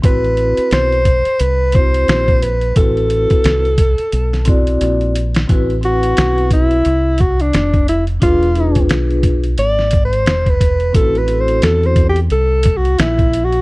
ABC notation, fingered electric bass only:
X:1
M:4/4
L:1/16
Q:"Swing 16ths" 1/4=88
K:Ador
V:1 name="Fingered electric bass" clef=bass
A,,,3 z B,,,3 z C,,4 _B,,,4 | A,,,3 z C,,3 z B,,,4 _B,,,4 | A,,,4 B,,,4 C,,4 =F,,,4 | E,,,4 B,,,4 ^G,,,4 E,,,4 |
A,,,4 E,,4 C,,4 _B,,,4 |]